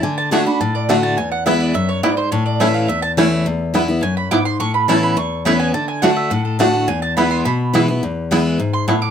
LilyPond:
<<
  \new Staff \with { instrumentName = "Mandolin" } { \time 4/4 \key e \mixolydian \tempo 4 = 210 gis''8 a''8 gis''8 b''8 a''8 d''8 fis''8 a''8 | gis''8 fis''8 e''8 d''8 e''8 cis''8 d''8 c''8 | cis''8 d''8 e''8 f''8 e''8 a''8 r4 | r2 gis''8 b''8 d'''8 c'''8 |
cis'''8 b''8 a''8 b''8 cis'''4 b''8 gis''8 | a''8 gis''8 fis''8 e''8 fis''8 a'8 d''8 fis''8 | gis''8 a''8 b''8 c'''8 b''2~ | b''4 r4. c'''8 cis'''8 d'''8 | }
  \new Staff \with { instrumentName = "Five-string banjo" } { \time 4/4 \key e \mixolydian r4 <a d' fis'>8 r4. <a d' fis'>8 r8 | r4 <b e'>8 r4. <b e'>8 r8 | r4 <a cis' e'>8 r4. <a cis' e'>8 r8 | r4 <b e'>8 r4. <b e'>8 r8 |
r4 <a cis' e'>8 r4. <a cis' e'>8 r8 | r4 <a d' fis'>8 r4. <a d' fis'>8 r8 | r4 <b e'>8 r4. <b e'>8 r8 | r4 <b e'>8 r4. <b e'>8 r8 | }
  \new Staff \with { instrumentName = "Steel-string acoustic guitar" } { \time 4/4 \key e \mixolydian << { r4 <d a d' fis'>8 <d' fis'>8 r4 <d a d' fis'>4 | r4 <e gis b e'>4 r2 | r4 <e a cis' e'>4 r4 <e a cis' e'>4 | r4 <e gis b e'>8 <b e'>8 r2 |
r4 <e b cis' e'>4 r4 <e b cis' e'>4 | r4 <d a d' fis'>4 r4 <d a d' fis'>4 | r4 <e gis b e'>4 r4 <e gis b e'>8 <b e'>8 | r4 <e gis b e'>4 r2 | } \\ { d2 a,2 | e,2 fis,4 gis,4 | a,2 e,2 | e,2 fis,4 gis,4 |
a,2 e,2 | d2 a,2 | e,2 b,2 | e,2 gis,4 a,4 | } >> }
>>